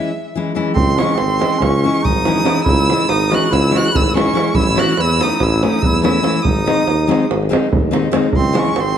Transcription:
Already playing: E3 G#3 C#4 E4 E5
0.35 E3 G#3 C#4 E4
0.55 E3 G#3 C#4 E4
0.74 C#2 C4 C6, davul low
0.88 davul high
0.97 E3 G#3 C#4 E4 C#6, davul high
1.09 davul high
1.15 C4 C6, davul high
1.19 G#1
1.39 E3 G#3 C#4 E4, davul high
1.59 C#2 C#4 C#6, davul high, davul low
1.74 davul high
1.84 E3 G#3 C#4 E4
1.95 davul high
2.03 G#1 D#4 D#6, davul low
2.15 davul high
2.25 E3 G#3 C#4 E4, davul high
2.43 E3 G#3 C#4 E4, davul high
2.56 davul high
2.64 C#2 E4 E6, davul low
2.78 davul high
2.89 E3 G#3 C#4 E4, davul high
3.00 davul high
3.08 G#1 D#4 D#6, davul high
3.31 E3 G#3 C#4 E4 F#4 F#6, davul high
3.50 C#2 E4 E6, davul high, davul low
3.65 davul high
3.71 E3 G#3 C#4 E4 F#4
3.76 F#6, davul high
3.86 davul high
3.92 G#1 E4, davul low
3.96 E6
4.07 davul high
4.14 E3 G#3 C#4 E4 C#6, davul high
4.33 E3 G#3 C#4 E4, davul high
4.46 davul high
4.54 A1 E4 E6, davul low
4.62 E4 E6
4.66 E4, davul high
4.75 E3 A3 C#4 E4 F#4, davul high
4.79 F#6
4.88 davul high
4.97 E2 E4 E6, davul high
5.18 E3 A3 C#4 E4 D#6, davul high
5.23 D#4
5.40 A1 E4 E6, davul high, davul low
5.52 davul high
5.57 E4 E6
5.63 E3 A3 C#4 D#4 E4 D#6, davul high
5.73 davul high
5.82 E2 E4 E6, davul low
5.94 davul high
6.02 E3 A3 C#4 E4 E6, davul high
6.23 E3 A3 C#4 E4, davul high
6.34 davul high
6.42 G#1 D#4 D#6, davul low
6.57 davul high
6.66 D#3 G#3 C4 D#4, davul high
6.77 davul high
6.86 D#2, davul high
7.00 davul high
7.07 D#3 G#3 C4 D#4, davul high
7.22 davul high
7.30 G#1, davul high
7.43 davul high
7.49 D#3 G#3 C4 D#4
7.53 davul high
7.64 davul high
7.72 D#2, davul low
7.91 D#3 G#3 C4 D#4, davul high
8.03 davul high
8.11 D#3 G#3 C4 D#4, davul high
8.24 davul high
8.32 C#2 C4, davul low
8.37 C6
8.44 davul high
8.53 E3 G#3 C#4 E4, davul high
8.57 C#4 C#6
8.65 davul high
8.75 G#1 C4, davul high
8.80 C6

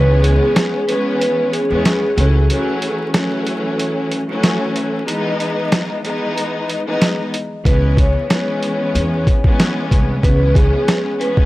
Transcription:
Already playing: C#2 E3 G#3 B3 C#4 B4
0.22 G#4, closed hi-hat
0.56 snare, closed hi-hat
0.87 E3 G#3 B3 C#4 B4, closed hi-hat
1.20 B4, closed hi-hat
1.52 G#4, closed hi-hat
1.69 E2 E3 G#3 B3 C#4
1.85 snare, closed hi-hat
2.15 C#2 E3 F#3 A3 C#4, closed hi-hat
2.49 E3 F#3 A3 C#4, closed hi-hat
2.82 closed hi-hat
3.13 E3 F#3 A3 C#4, snare, closed hi-hat
3.47 closed hi-hat
3.79 closed hi-hat
4.11 closed hi-hat
4.29 E3 F#3 A3 C#4
4.43 snare, closed hi-hat
4.76 closed hi-hat
5.05 E3 G#3 B3 D#4, closed hi-hat
5.40 closed hi-hat
5.72 snare, closed hi-hat
6.03 E3 G#3 B3 D#4, closed hi-hat
6.37 closed hi-hat
6.70 closed hi-hat
6.86 E3 G#3 B3 D#4
7.02 snare, closed hi-hat
7.34 closed hi-hat
7.65 C#2 E3 G#3 B3 C#4 B4, kick, closed hi-hat
7.97 C#5, kick, closed hi-hat
8.28 E3 G#3 B3 C#4, snare, closed hi-hat
8.63 closed hi-hat
8.95 E2, closed hi-hat
9.27 kick, closed hi-hat
9.43 E3 G#3 B3 C#4, kick
9.60 snare, closed hi-hat
9.91 C2, kick, closed hi-hat
10.22 C#2 E3 G#3 B3 C#4 B4, kick, closed hi-hat
10.55 G#4, kick, closed hi-hat
10.88 snare, closed hi-hat
11.19 E3 G#3 B3 C#4 B4, closed hi-hat
11.37 kick

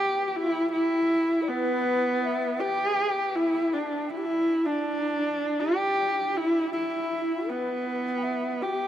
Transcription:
Already playing: G4
0.28 G4
0.36 E4
0.72 E4
1.42 D5
1.48 B3 B4
2.24 E5
2.60 G4
3.35 E4
3.74 D4 E4
3.78 D4
4.10 E4
4.17 G4
4.26 E4
4.66 D4
5.60 G4
6.36 E4
6.73 E4
7.48 B3 B4
8.17 G5
8.24 E5
8.62 F#4 G4
8.75 G4

